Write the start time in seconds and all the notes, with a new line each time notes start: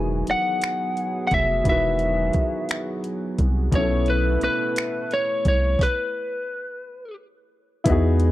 Already playing: E1 D#3 E3 F#3 B3 F#4 G#4 G#5
0.27 F1 F#5, closed hi-hat
0.62 finger snap, closed hi-hat
0.97 closed hi-hat
1.27 F#5, closed hi-hat
1.31 F1 E5, kick
1.64 E1 D#3 E3 B3, kick, closed hi-hat
1.69 F#4 B4 E5
1.99 closed hi-hat
2.33 C2, kick, closed hi-hat
2.69 finger snap, closed hi-hat
3.04 closed hi-hat
3.38 C2, kick, closed hi-hat
3.71 B1 B2 A3 B3 C#4 E4 C#5, kick, closed hi-hat
3.77 E4 A4
4.06 B4, closed hi-hat
4.41 C2 B4, closed hi-hat
4.76 finger snap, closed hi-hat
5.11 C#5, closed hi-hat
5.45 C2 C#5, kick, closed hi-hat
5.79 B4, kick, snare
7.84 E2 G#3 B3 D#4 E4 F#4 G#4 D#5, kick, closed hi-hat
7.90 F#4 G#4
8.20 closed hi-hat